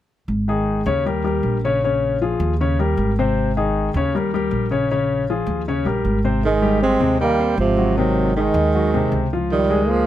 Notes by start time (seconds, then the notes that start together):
0.28 G#1
0.48 D#3 D#4 G#4
0.86 D#2 C#3 C#4 C#5
1.05 G3 G4 A#4
1.24 G3 G4 A#4
1.43 A#1
1.64 C#3 C#4 C#5
1.84 C#3 C#4 C#5
2.21 F3 F4 G#4
2.40 D#2
2.61 C#3 C#4 C#5
2.79 G3 G4 A#4
2.97 G#1
3.19 C3 C4 C5
3.57 D#3 D#4 G#4
3.94 D#2 C#3 C#4 C#5
4.15 G3 G4 A#4
4.34 G3 G4 A#4
4.51 A#1
4.71 C#3 C#4 C#5
4.91 C#3 C#4 C#5
5.30 F3 F4 G#4
5.46 D#2
5.68 C#3 C#4 C#5
5.85 A#1 G3 G4 A#4
6.05 G#1
6.24 C3 C4 C5
6.44 D#3 G#3
6.62 G3 G4
6.82 G#3 C4
7.00 D#2 C3 C4
7.19 D#3 G3 A#3 D#4
7.39 C4 C5
7.58 G#1 C3 F3
7.77 F#3 F#4
7.97 C3 D#3 F#3 C4
8.36 D#3 G#3 D#4
8.54 D#2
8.75 F#3 F#4
8.94 C3 C4
9.12 C#2
9.33 F3 F4
9.50 D#3 G3
9.70 G#3 G#4
9.87 F3 A#3